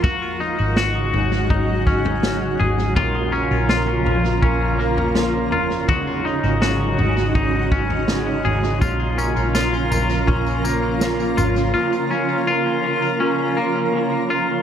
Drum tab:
TB |----------------|----------------|----------------|x-x-x-x---x-x-x-|
SD |----o-------o---|----o-------o---|----o-------o---|----o-------o---|
FT |o-----o-o--o--o-|o-----o-o--o--o-|o-----o-o--o--o-|o-----o-o-----o-|
BD |o-------o-o-----|o-------o-------|o-------o-o-----|o-------o-------|

TB |----------------|
SD |----------------|
FT |----------------|
BD |----------------|